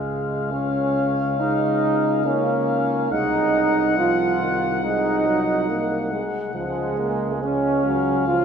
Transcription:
0.00 3.08 C#2 soft
0.00 0.49 G#3 soft
0.00 0.54 G#3 medium
0.00 3.13 F5 soft
0.52 1.39 C#4 medium
0.52 1.42 C#4 medium
1.40 2.22 G#3 medium
1.40 2.24 D#4 medium
1.40 2.28 D#4 medium
2.25 3.13 A#3 medium
2.25 3.10 C#4 medium
2.25 3.11 C#4 medium
3.11 6.23 C2 soft
3.11 3.97 G#3 soft
3.11 3.99 D#4 medium
3.11 3.97 D#4 medium
3.11 7.15 F#5 soft
3.98 4.43 F3 soft
3.98 4.83 F4 medium
4.41 4.83 D#3 soft
4.84 5.28 G#3 medium
4.84 6.09 D#4 medium
5.26 5.71 F#3 soft
5.69 6.13 A#3 medium
6.12 6.54 G#3 soft
6.54 8.45 C#2 soft
6.54 6.98 F3 soft
6.54 7.44 G#3 medium
6.54 7.39 G#3 medium
6.99 7.44 A#3 soft
7.42 7.85 G#3 soft
7.42 8.27 C#4 medium
7.42 8.45 F5 medium
7.85 8.27 F#3 medium
8.28 8.45 F3 medium
8.28 8.45 F4 medium

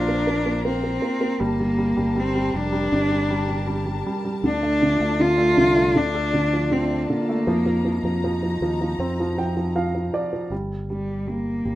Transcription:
0.00 0.98 A#1 medium
0.00 0.08 A#3 medium
0.00 0.66 D4 loud
0.00 1.36 F4 medium
0.00 1.37 C5 medium
0.00 1.36 A#5 medium
0.08 0.26 A#3 medium
0.27 0.44 A#3 medium
0.46 0.63 A#3 soft
0.65 0.82 A#3 medium
0.65 1.44 C4 medium
0.84 1.01 A#3 soft
1.02 1.19 A#3 medium
1.21 1.39 A#3 medium
1.40 1.93 G1 medium
1.40 1.58 G3 medium
1.40 2.21 A#3 medium
1.40 4.41 G4 medium
1.40 4.41 A#4 medium
1.40 7.44 A5 medium
1.60 1.76 G3 soft
1.78 1.95 G3 medium
1.97 2.50 G1 medium
1.97 2.14 G3 medium
2.16 2.34 G3 medium
2.16 2.58 C4 medium
2.35 2.52 G3 medium
2.54 2.89 F1 medium
2.54 2.71 G3 medium
2.54 4.07 D4 loud
2.72 3.10 G3 medium
2.92 4.02 G1 loud
2.92 4.40 D4 medium
3.11 3.29 G3 soft
3.30 3.47 G3 medium
3.48 3.66 G3 soft
3.67 3.84 G3 medium
3.86 4.05 G3 medium
4.06 4.23 G3 medium
4.25 4.43 G3 medium
4.43 4.97 D2 medium
4.43 4.81 D3 medium
4.43 5.23 D4 loud
4.43 10.48 F4 medium
4.43 7.45 D5 medium
4.63 4.99 A3 soft
4.82 5.18 D3 medium
5.00 5.53 D2 medium
5.00 5.36 A3 medium
5.20 5.56 D3 medium
5.20 5.99 F4 loud
5.38 5.75 A3 medium
5.57 5.93 C2 medium
5.57 5.94 D3 medium
5.76 7.24 A3 medium
5.95 7.05 D2 medium
5.95 6.32 D3 medium
5.95 6.74 D4 loud
6.15 7.44 A4 soft
6.34 6.70 D3 medium
6.53 7.45 F3 soft
6.71 7.08 D3 medium
6.71 7.09 C4 medium
7.10 7.47 D3 medium
7.10 8.58 A#3 medium
7.29 7.47 A3 medium
7.47 8.00 F2 medium
7.47 7.65 F3 medium
7.47 10.48 D#4 medium
7.47 10.48 A#5 medium
7.66 7.83 F3 soft
7.85 8.03 F3 medium
8.04 8.57 F2 medium
8.04 8.23 F3 soft
8.24 8.41 F3 medium
8.43 8.61 F3 medium
8.61 8.97 D#2 medium
8.61 8.80 F3 medium
8.81 9.18 F3 medium
8.99 10.09 F2 medium
8.99 10.48 C4 medium
9.20 9.37 F3 medium
9.38 9.55 F3 medium
9.38 9.73 G5 medium
9.57 9.74 F3 soft
9.76 9.93 F3 medium
9.76 10.11 F5 medium
9.95 10.12 F3 soft
10.14 10.31 F3 soft
10.14 10.49 D5 medium
10.33 10.51 F3 soft
10.50 11.61 G1 medium
10.50 10.88 G3 soft
10.90 11.26 G3 soft
10.90 11.30 G3 medium
11.27 11.64 G3 soft
11.27 11.75 A#3 medium
11.65 11.75 G1 medium
11.65 11.75 G3 soft

